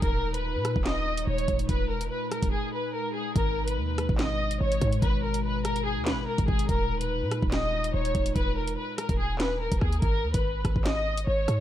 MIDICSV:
0, 0, Header, 1, 5, 480
1, 0, Start_track
1, 0, Key_signature, 5, "minor"
1, 0, Tempo, 416667
1, 26, Time_signature, 4, 2, 24, 8
1, 13365, End_track
2, 0, Start_track
2, 0, Title_t, "Violin section"
2, 0, Program_c, 0, 48
2, 27, Note_on_c, 0, 70, 103
2, 372, Note_off_c, 0, 70, 0
2, 394, Note_on_c, 0, 71, 88
2, 951, Note_off_c, 0, 71, 0
2, 987, Note_on_c, 0, 75, 92
2, 1438, Note_off_c, 0, 75, 0
2, 1464, Note_on_c, 0, 73, 91
2, 1917, Note_off_c, 0, 73, 0
2, 1948, Note_on_c, 0, 71, 104
2, 2172, Note_off_c, 0, 71, 0
2, 2185, Note_on_c, 0, 70, 83
2, 2410, Note_off_c, 0, 70, 0
2, 2427, Note_on_c, 0, 71, 86
2, 2651, Note_off_c, 0, 71, 0
2, 2666, Note_on_c, 0, 70, 78
2, 2890, Note_off_c, 0, 70, 0
2, 2903, Note_on_c, 0, 68, 87
2, 3129, Note_off_c, 0, 68, 0
2, 3149, Note_on_c, 0, 71, 83
2, 3372, Note_off_c, 0, 71, 0
2, 3388, Note_on_c, 0, 70, 82
2, 3612, Note_off_c, 0, 70, 0
2, 3624, Note_on_c, 0, 68, 79
2, 3850, Note_off_c, 0, 68, 0
2, 3867, Note_on_c, 0, 70, 105
2, 4212, Note_off_c, 0, 70, 0
2, 4234, Note_on_c, 0, 71, 80
2, 4791, Note_off_c, 0, 71, 0
2, 4824, Note_on_c, 0, 75, 91
2, 5277, Note_off_c, 0, 75, 0
2, 5307, Note_on_c, 0, 73, 95
2, 5758, Note_off_c, 0, 73, 0
2, 5789, Note_on_c, 0, 71, 103
2, 6012, Note_off_c, 0, 71, 0
2, 6027, Note_on_c, 0, 70, 85
2, 6251, Note_off_c, 0, 70, 0
2, 6265, Note_on_c, 0, 71, 92
2, 6490, Note_off_c, 0, 71, 0
2, 6510, Note_on_c, 0, 70, 97
2, 6733, Note_off_c, 0, 70, 0
2, 6748, Note_on_c, 0, 68, 90
2, 6972, Note_off_c, 0, 68, 0
2, 6988, Note_on_c, 0, 71, 88
2, 7212, Note_off_c, 0, 71, 0
2, 7225, Note_on_c, 0, 70, 84
2, 7450, Note_off_c, 0, 70, 0
2, 7464, Note_on_c, 0, 68, 85
2, 7690, Note_off_c, 0, 68, 0
2, 7708, Note_on_c, 0, 70, 105
2, 8052, Note_off_c, 0, 70, 0
2, 8075, Note_on_c, 0, 71, 83
2, 8631, Note_off_c, 0, 71, 0
2, 8667, Note_on_c, 0, 75, 95
2, 9118, Note_off_c, 0, 75, 0
2, 9144, Note_on_c, 0, 73, 90
2, 9596, Note_off_c, 0, 73, 0
2, 9627, Note_on_c, 0, 71, 109
2, 9851, Note_off_c, 0, 71, 0
2, 9864, Note_on_c, 0, 70, 83
2, 10090, Note_off_c, 0, 70, 0
2, 10105, Note_on_c, 0, 71, 89
2, 10330, Note_off_c, 0, 71, 0
2, 10345, Note_on_c, 0, 70, 81
2, 10570, Note_off_c, 0, 70, 0
2, 10583, Note_on_c, 0, 68, 87
2, 10809, Note_off_c, 0, 68, 0
2, 10828, Note_on_c, 0, 71, 84
2, 11051, Note_off_c, 0, 71, 0
2, 11068, Note_on_c, 0, 70, 82
2, 11292, Note_off_c, 0, 70, 0
2, 11304, Note_on_c, 0, 68, 76
2, 11530, Note_off_c, 0, 68, 0
2, 11546, Note_on_c, 0, 70, 105
2, 11891, Note_off_c, 0, 70, 0
2, 11913, Note_on_c, 0, 71, 74
2, 12470, Note_off_c, 0, 71, 0
2, 12505, Note_on_c, 0, 75, 91
2, 12957, Note_off_c, 0, 75, 0
2, 12986, Note_on_c, 0, 73, 90
2, 13365, Note_off_c, 0, 73, 0
2, 13365, End_track
3, 0, Start_track
3, 0, Title_t, "Ambient pad"
3, 0, Program_c, 1, 92
3, 0, Note_on_c, 1, 63, 94
3, 26, Note_on_c, 1, 46, 83
3, 26, Note_on_c, 1, 56, 80
3, 3828, Note_off_c, 1, 46, 0
3, 3866, Note_on_c, 1, 47, 85
3, 7660, Note_off_c, 1, 56, 0
3, 7660, Note_off_c, 1, 63, 0
3, 7668, Note_off_c, 1, 47, 0
3, 7707, Note_on_c, 1, 46, 89
3, 7707, Note_on_c, 1, 56, 77
3, 7707, Note_on_c, 1, 63, 95
3, 11508, Note_off_c, 1, 46, 0
3, 11508, Note_off_c, 1, 56, 0
3, 11508, Note_off_c, 1, 63, 0
3, 13365, End_track
4, 0, Start_track
4, 0, Title_t, "808-style bass"
4, 0, Program_c, 2, 38
4, 26, Note_on_c, 2, 27, 108
4, 633, Note_on_c, 2, 46, 100
4, 651, Note_off_c, 2, 27, 0
4, 861, Note_off_c, 2, 46, 0
4, 873, Note_on_c, 2, 27, 104
4, 1443, Note_off_c, 2, 27, 0
4, 1466, Note_on_c, 2, 27, 103
4, 1697, Note_off_c, 2, 27, 0
4, 1707, Note_on_c, 2, 27, 107
4, 1937, Note_off_c, 2, 27, 0
4, 1946, Note_on_c, 2, 27, 111
4, 2186, Note_on_c, 2, 28, 98
4, 2204, Note_off_c, 2, 27, 0
4, 2414, Note_off_c, 2, 28, 0
4, 2793, Note_on_c, 2, 27, 106
4, 2902, Note_off_c, 2, 27, 0
4, 3867, Note_on_c, 2, 32, 108
4, 4347, Note_on_c, 2, 39, 105
4, 4364, Note_off_c, 2, 32, 0
4, 4695, Note_off_c, 2, 39, 0
4, 4714, Note_on_c, 2, 32, 103
4, 5283, Note_off_c, 2, 32, 0
4, 5307, Note_on_c, 2, 32, 107
4, 5537, Note_off_c, 2, 32, 0
4, 5547, Note_on_c, 2, 44, 110
4, 5777, Note_off_c, 2, 44, 0
4, 5786, Note_on_c, 2, 32, 109
4, 6874, Note_on_c, 2, 39, 96
4, 6891, Note_off_c, 2, 32, 0
4, 7050, Note_on_c, 2, 32, 105
4, 7067, Note_off_c, 2, 39, 0
4, 7217, Note_off_c, 2, 32, 0
4, 7354, Note_on_c, 2, 32, 99
4, 7460, Note_off_c, 2, 32, 0
4, 7467, Note_on_c, 2, 32, 112
4, 7697, Note_off_c, 2, 32, 0
4, 7706, Note_on_c, 2, 27, 106
4, 8313, Note_on_c, 2, 46, 100
4, 8331, Note_off_c, 2, 27, 0
4, 8541, Note_off_c, 2, 46, 0
4, 8554, Note_on_c, 2, 27, 102
4, 9123, Note_off_c, 2, 27, 0
4, 9146, Note_on_c, 2, 27, 107
4, 9377, Note_off_c, 2, 27, 0
4, 9387, Note_on_c, 2, 27, 110
4, 9617, Note_off_c, 2, 27, 0
4, 9626, Note_on_c, 2, 27, 109
4, 9866, Note_on_c, 2, 28, 99
4, 9884, Note_off_c, 2, 27, 0
4, 10094, Note_off_c, 2, 28, 0
4, 10473, Note_on_c, 2, 27, 101
4, 11165, Note_off_c, 2, 27, 0
4, 11194, Note_on_c, 2, 27, 97
4, 11300, Note_off_c, 2, 27, 0
4, 11307, Note_on_c, 2, 39, 107
4, 11537, Note_off_c, 2, 39, 0
4, 11546, Note_on_c, 2, 32, 108
4, 11786, Note_on_c, 2, 39, 98
4, 11803, Note_off_c, 2, 32, 0
4, 11907, Note_off_c, 2, 39, 0
4, 11914, Note_on_c, 2, 32, 100
4, 12252, Note_off_c, 2, 32, 0
4, 12265, Note_on_c, 2, 32, 104
4, 12388, Note_off_c, 2, 32, 0
4, 12393, Note_on_c, 2, 32, 105
4, 12962, Note_off_c, 2, 32, 0
4, 12986, Note_on_c, 2, 32, 107
4, 13217, Note_off_c, 2, 32, 0
4, 13226, Note_on_c, 2, 44, 110
4, 13365, Note_off_c, 2, 44, 0
4, 13365, End_track
5, 0, Start_track
5, 0, Title_t, "Drums"
5, 26, Note_on_c, 9, 36, 124
5, 27, Note_on_c, 9, 42, 77
5, 142, Note_off_c, 9, 36, 0
5, 142, Note_off_c, 9, 42, 0
5, 394, Note_on_c, 9, 42, 85
5, 509, Note_off_c, 9, 42, 0
5, 747, Note_on_c, 9, 37, 107
5, 747, Note_on_c, 9, 42, 88
5, 862, Note_off_c, 9, 37, 0
5, 862, Note_off_c, 9, 42, 0
5, 873, Note_on_c, 9, 36, 103
5, 979, Note_on_c, 9, 39, 88
5, 986, Note_on_c, 9, 38, 109
5, 989, Note_off_c, 9, 36, 0
5, 1094, Note_off_c, 9, 39, 0
5, 1101, Note_off_c, 9, 38, 0
5, 1354, Note_on_c, 9, 42, 80
5, 1469, Note_off_c, 9, 42, 0
5, 1593, Note_on_c, 9, 42, 50
5, 1706, Note_off_c, 9, 42, 0
5, 1706, Note_on_c, 9, 42, 83
5, 1707, Note_on_c, 9, 36, 100
5, 1822, Note_off_c, 9, 36, 0
5, 1822, Note_off_c, 9, 42, 0
5, 1834, Note_on_c, 9, 42, 77
5, 1946, Note_off_c, 9, 42, 0
5, 1946, Note_on_c, 9, 36, 123
5, 1946, Note_on_c, 9, 42, 78
5, 2062, Note_off_c, 9, 36, 0
5, 2062, Note_off_c, 9, 42, 0
5, 2314, Note_on_c, 9, 42, 83
5, 2429, Note_off_c, 9, 42, 0
5, 2667, Note_on_c, 9, 37, 106
5, 2667, Note_on_c, 9, 42, 86
5, 2782, Note_off_c, 9, 42, 0
5, 2783, Note_off_c, 9, 37, 0
5, 2794, Note_on_c, 9, 36, 105
5, 2794, Note_on_c, 9, 42, 74
5, 2909, Note_off_c, 9, 36, 0
5, 2909, Note_off_c, 9, 42, 0
5, 3867, Note_on_c, 9, 36, 123
5, 3867, Note_on_c, 9, 42, 80
5, 3982, Note_off_c, 9, 36, 0
5, 3982, Note_off_c, 9, 42, 0
5, 4234, Note_on_c, 9, 42, 84
5, 4349, Note_off_c, 9, 42, 0
5, 4587, Note_on_c, 9, 37, 107
5, 4587, Note_on_c, 9, 42, 87
5, 4702, Note_off_c, 9, 37, 0
5, 4702, Note_off_c, 9, 42, 0
5, 4714, Note_on_c, 9, 36, 108
5, 4820, Note_on_c, 9, 39, 89
5, 4827, Note_on_c, 9, 38, 106
5, 4829, Note_off_c, 9, 36, 0
5, 4935, Note_off_c, 9, 39, 0
5, 4942, Note_off_c, 9, 38, 0
5, 5194, Note_on_c, 9, 42, 79
5, 5309, Note_off_c, 9, 42, 0
5, 5434, Note_on_c, 9, 42, 49
5, 5547, Note_off_c, 9, 42, 0
5, 5547, Note_on_c, 9, 36, 104
5, 5547, Note_on_c, 9, 42, 83
5, 5662, Note_off_c, 9, 36, 0
5, 5662, Note_off_c, 9, 42, 0
5, 5674, Note_on_c, 9, 42, 78
5, 5786, Note_off_c, 9, 42, 0
5, 5786, Note_on_c, 9, 36, 124
5, 5786, Note_on_c, 9, 42, 77
5, 5902, Note_off_c, 9, 36, 0
5, 5902, Note_off_c, 9, 42, 0
5, 6154, Note_on_c, 9, 42, 85
5, 6269, Note_off_c, 9, 42, 0
5, 6507, Note_on_c, 9, 37, 103
5, 6507, Note_on_c, 9, 42, 84
5, 6622, Note_off_c, 9, 37, 0
5, 6622, Note_off_c, 9, 42, 0
5, 6633, Note_on_c, 9, 42, 73
5, 6749, Note_off_c, 9, 42, 0
5, 6979, Note_on_c, 9, 39, 86
5, 6987, Note_on_c, 9, 38, 109
5, 7095, Note_off_c, 9, 39, 0
5, 7102, Note_off_c, 9, 38, 0
5, 7354, Note_on_c, 9, 36, 97
5, 7354, Note_on_c, 9, 42, 86
5, 7467, Note_off_c, 9, 36, 0
5, 7467, Note_on_c, 9, 36, 102
5, 7469, Note_off_c, 9, 42, 0
5, 7582, Note_off_c, 9, 36, 0
5, 7594, Note_on_c, 9, 42, 73
5, 7706, Note_off_c, 9, 42, 0
5, 7706, Note_on_c, 9, 36, 125
5, 7706, Note_on_c, 9, 42, 77
5, 7821, Note_off_c, 9, 36, 0
5, 7822, Note_off_c, 9, 42, 0
5, 8074, Note_on_c, 9, 42, 83
5, 8189, Note_off_c, 9, 42, 0
5, 8427, Note_on_c, 9, 37, 103
5, 8427, Note_on_c, 9, 42, 85
5, 8542, Note_off_c, 9, 37, 0
5, 8542, Note_off_c, 9, 42, 0
5, 8553, Note_on_c, 9, 36, 107
5, 8659, Note_on_c, 9, 39, 88
5, 8666, Note_on_c, 9, 38, 109
5, 8669, Note_off_c, 9, 36, 0
5, 8774, Note_off_c, 9, 39, 0
5, 8781, Note_off_c, 9, 38, 0
5, 9034, Note_on_c, 9, 42, 76
5, 9149, Note_off_c, 9, 42, 0
5, 9274, Note_on_c, 9, 42, 50
5, 9386, Note_off_c, 9, 42, 0
5, 9386, Note_on_c, 9, 42, 83
5, 9387, Note_on_c, 9, 36, 105
5, 9501, Note_off_c, 9, 42, 0
5, 9502, Note_off_c, 9, 36, 0
5, 9514, Note_on_c, 9, 42, 81
5, 9626, Note_off_c, 9, 42, 0
5, 9626, Note_on_c, 9, 36, 124
5, 9626, Note_on_c, 9, 42, 81
5, 9742, Note_off_c, 9, 36, 0
5, 9742, Note_off_c, 9, 42, 0
5, 9993, Note_on_c, 9, 42, 82
5, 10109, Note_off_c, 9, 42, 0
5, 10347, Note_on_c, 9, 37, 101
5, 10347, Note_on_c, 9, 42, 84
5, 10462, Note_off_c, 9, 37, 0
5, 10462, Note_off_c, 9, 42, 0
5, 10473, Note_on_c, 9, 36, 102
5, 10473, Note_on_c, 9, 42, 71
5, 10588, Note_off_c, 9, 42, 0
5, 10589, Note_off_c, 9, 36, 0
5, 10819, Note_on_c, 9, 39, 85
5, 10826, Note_on_c, 9, 38, 108
5, 10934, Note_off_c, 9, 39, 0
5, 10942, Note_off_c, 9, 38, 0
5, 11193, Note_on_c, 9, 42, 88
5, 11194, Note_on_c, 9, 36, 98
5, 11305, Note_on_c, 9, 37, 96
5, 11307, Note_off_c, 9, 36, 0
5, 11307, Note_on_c, 9, 36, 104
5, 11308, Note_off_c, 9, 42, 0
5, 11420, Note_off_c, 9, 37, 0
5, 11422, Note_off_c, 9, 36, 0
5, 11433, Note_on_c, 9, 42, 70
5, 11546, Note_off_c, 9, 42, 0
5, 11546, Note_on_c, 9, 36, 117
5, 11546, Note_on_c, 9, 42, 78
5, 11661, Note_off_c, 9, 36, 0
5, 11661, Note_off_c, 9, 42, 0
5, 11913, Note_on_c, 9, 42, 78
5, 11914, Note_on_c, 9, 36, 94
5, 12028, Note_off_c, 9, 42, 0
5, 12029, Note_off_c, 9, 36, 0
5, 12265, Note_on_c, 9, 36, 93
5, 12266, Note_on_c, 9, 37, 103
5, 12266, Note_on_c, 9, 42, 83
5, 12380, Note_off_c, 9, 36, 0
5, 12381, Note_off_c, 9, 42, 0
5, 12382, Note_off_c, 9, 37, 0
5, 12393, Note_on_c, 9, 36, 103
5, 12498, Note_on_c, 9, 39, 85
5, 12506, Note_on_c, 9, 38, 107
5, 12506, Note_on_c, 9, 42, 69
5, 12508, Note_off_c, 9, 36, 0
5, 12613, Note_off_c, 9, 39, 0
5, 12621, Note_off_c, 9, 38, 0
5, 12621, Note_off_c, 9, 42, 0
5, 12873, Note_on_c, 9, 42, 77
5, 12989, Note_off_c, 9, 42, 0
5, 13225, Note_on_c, 9, 37, 95
5, 13226, Note_on_c, 9, 42, 78
5, 13340, Note_off_c, 9, 37, 0
5, 13341, Note_off_c, 9, 42, 0
5, 13365, End_track
0, 0, End_of_file